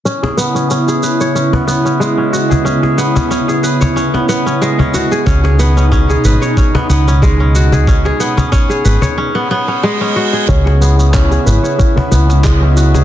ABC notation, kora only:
X:1
M:4/4
L:1/16
Q:"Swing 16ths" 1/4=92
K:C#m
V:1 name="Kora"
C G B, C C G B c C B, B, C G, C F G | C G B, C C G B c C B, B, C G, C F G | C G B, C C G B c C B, B, C G, C F G | C G B, C C G B c C B, B, C G, C F G |
C G B, C C G B c C B, B, C G, C F G |]